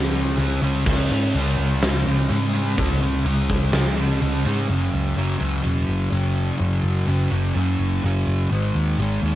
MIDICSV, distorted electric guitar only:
0, 0, Header, 1, 2, 480
1, 0, Start_track
1, 0, Tempo, 477707
1, 865, Time_signature, 4, 2, 24, 8
1, 9397, End_track
2, 0, Start_track
2, 0, Title_t, "Distorted electric guitar"
2, 0, Program_c, 0, 30
2, 0, Note_on_c, 0, 49, 100
2, 0, Note_on_c, 0, 56, 99
2, 0, Note_on_c, 0, 61, 112
2, 124, Note_off_c, 0, 61, 0
2, 128, Note_on_c, 0, 61, 79
2, 152, Note_off_c, 0, 56, 0
2, 156, Note_on_c, 0, 56, 64
2, 362, Note_off_c, 0, 49, 0
2, 366, Note_on_c, 0, 49, 76
2, 381, Note_off_c, 0, 56, 0
2, 385, Note_on_c, 0, 56, 82
2, 395, Note_off_c, 0, 61, 0
2, 399, Note_on_c, 0, 61, 84
2, 619, Note_off_c, 0, 61, 0
2, 623, Note_on_c, 0, 61, 83
2, 643, Note_off_c, 0, 56, 0
2, 647, Note_on_c, 0, 56, 66
2, 855, Note_off_c, 0, 49, 0
2, 859, Note_on_c, 0, 49, 83
2, 873, Note_off_c, 0, 56, 0
2, 877, Note_on_c, 0, 56, 92
2, 885, Note_off_c, 0, 61, 0
2, 889, Note_on_c, 0, 61, 103
2, 1093, Note_off_c, 0, 61, 0
2, 1097, Note_on_c, 0, 61, 81
2, 1121, Note_off_c, 0, 56, 0
2, 1125, Note_on_c, 0, 56, 62
2, 1340, Note_off_c, 0, 49, 0
2, 1344, Note_on_c, 0, 49, 91
2, 1348, Note_off_c, 0, 56, 0
2, 1352, Note_on_c, 0, 56, 106
2, 1364, Note_off_c, 0, 61, 0
2, 1368, Note_on_c, 0, 61, 105
2, 2064, Note_off_c, 0, 61, 0
2, 2068, Note_on_c, 0, 61, 71
2, 2079, Note_off_c, 0, 56, 0
2, 2091, Note_on_c, 0, 56, 58
2, 2295, Note_off_c, 0, 49, 0
2, 2307, Note_on_c, 0, 49, 81
2, 2318, Note_off_c, 0, 56, 0
2, 2328, Note_off_c, 0, 61, 0
2, 2330, Note_on_c, 0, 56, 81
2, 2332, Note_on_c, 0, 61, 86
2, 2540, Note_off_c, 0, 61, 0
2, 2544, Note_on_c, 0, 61, 75
2, 2560, Note_off_c, 0, 56, 0
2, 2572, Note_on_c, 0, 56, 68
2, 2774, Note_off_c, 0, 49, 0
2, 2786, Note_off_c, 0, 56, 0
2, 2786, Note_on_c, 0, 49, 94
2, 2791, Note_off_c, 0, 61, 0
2, 2798, Note_on_c, 0, 56, 92
2, 2803, Note_on_c, 0, 61, 102
2, 3009, Note_off_c, 0, 61, 0
2, 3021, Note_on_c, 0, 61, 74
2, 3034, Note_off_c, 0, 56, 0
2, 3046, Note_on_c, 0, 56, 66
2, 3251, Note_off_c, 0, 49, 0
2, 3263, Note_off_c, 0, 56, 0
2, 3263, Note_on_c, 0, 49, 91
2, 3275, Note_on_c, 0, 56, 102
2, 3279, Note_off_c, 0, 61, 0
2, 3291, Note_on_c, 0, 61, 104
2, 3970, Note_off_c, 0, 61, 0
2, 3982, Note_on_c, 0, 61, 72
2, 3995, Note_off_c, 0, 56, 0
2, 4007, Note_on_c, 0, 56, 58
2, 4206, Note_off_c, 0, 49, 0
2, 4219, Note_on_c, 0, 49, 78
2, 4220, Note_off_c, 0, 56, 0
2, 4232, Note_off_c, 0, 61, 0
2, 4232, Note_on_c, 0, 56, 85
2, 4244, Note_on_c, 0, 61, 87
2, 4456, Note_off_c, 0, 61, 0
2, 4468, Note_on_c, 0, 61, 70
2, 4485, Note_off_c, 0, 56, 0
2, 4497, Note_on_c, 0, 56, 64
2, 4687, Note_off_c, 0, 49, 0
2, 4692, Note_off_c, 0, 61, 0
2, 4706, Note_off_c, 0, 56, 0
2, 4706, Note_on_c, 0, 42, 90
2, 4720, Note_on_c, 0, 49, 90
2, 4731, Note_on_c, 0, 54, 88
2, 5177, Note_off_c, 0, 42, 0
2, 5181, Note_on_c, 0, 42, 73
2, 5184, Note_off_c, 0, 49, 0
2, 5197, Note_on_c, 0, 49, 76
2, 5207, Note_off_c, 0, 54, 0
2, 5211, Note_on_c, 0, 54, 82
2, 5405, Note_off_c, 0, 54, 0
2, 5409, Note_on_c, 0, 54, 75
2, 5422, Note_off_c, 0, 49, 0
2, 5434, Note_on_c, 0, 49, 57
2, 5647, Note_off_c, 0, 42, 0
2, 5651, Note_on_c, 0, 42, 97
2, 5658, Note_off_c, 0, 49, 0
2, 5670, Note_on_c, 0, 49, 93
2, 5671, Note_off_c, 0, 54, 0
2, 5675, Note_on_c, 0, 54, 93
2, 6116, Note_off_c, 0, 42, 0
2, 6128, Note_on_c, 0, 42, 76
2, 6138, Note_off_c, 0, 49, 0
2, 6150, Note_off_c, 0, 54, 0
2, 6150, Note_on_c, 0, 49, 85
2, 6154, Note_on_c, 0, 54, 85
2, 6593, Note_off_c, 0, 42, 0
2, 6605, Note_on_c, 0, 42, 93
2, 6610, Note_off_c, 0, 49, 0
2, 6622, Note_on_c, 0, 49, 85
2, 6629, Note_off_c, 0, 54, 0
2, 6633, Note_on_c, 0, 54, 101
2, 7085, Note_off_c, 0, 42, 0
2, 7097, Note_on_c, 0, 42, 77
2, 7100, Note_off_c, 0, 49, 0
2, 7112, Note_on_c, 0, 49, 86
2, 7118, Note_off_c, 0, 54, 0
2, 7122, Note_on_c, 0, 54, 89
2, 7341, Note_off_c, 0, 54, 0
2, 7345, Note_on_c, 0, 54, 77
2, 7356, Note_off_c, 0, 49, 0
2, 7368, Note_on_c, 0, 49, 58
2, 7574, Note_off_c, 0, 42, 0
2, 7585, Note_off_c, 0, 49, 0
2, 7586, Note_on_c, 0, 42, 89
2, 7597, Note_on_c, 0, 49, 103
2, 7603, Note_off_c, 0, 54, 0
2, 7607, Note_on_c, 0, 54, 111
2, 8052, Note_off_c, 0, 42, 0
2, 8065, Note_on_c, 0, 42, 76
2, 8067, Note_off_c, 0, 49, 0
2, 8079, Note_on_c, 0, 49, 82
2, 8089, Note_off_c, 0, 54, 0
2, 8093, Note_on_c, 0, 54, 86
2, 8531, Note_off_c, 0, 42, 0
2, 8538, Note_off_c, 0, 49, 0
2, 8545, Note_on_c, 0, 44, 94
2, 8557, Note_on_c, 0, 51, 92
2, 8564, Note_off_c, 0, 54, 0
2, 8568, Note_on_c, 0, 56, 93
2, 9028, Note_off_c, 0, 44, 0
2, 9032, Note_on_c, 0, 44, 74
2, 9034, Note_off_c, 0, 51, 0
2, 9046, Note_on_c, 0, 51, 81
2, 9056, Note_off_c, 0, 56, 0
2, 9060, Note_on_c, 0, 56, 85
2, 9264, Note_off_c, 0, 56, 0
2, 9268, Note_on_c, 0, 56, 76
2, 9278, Note_off_c, 0, 51, 0
2, 9290, Note_on_c, 0, 51, 58
2, 9397, Note_off_c, 0, 44, 0
2, 9397, Note_off_c, 0, 51, 0
2, 9397, Note_off_c, 0, 56, 0
2, 9397, End_track
0, 0, End_of_file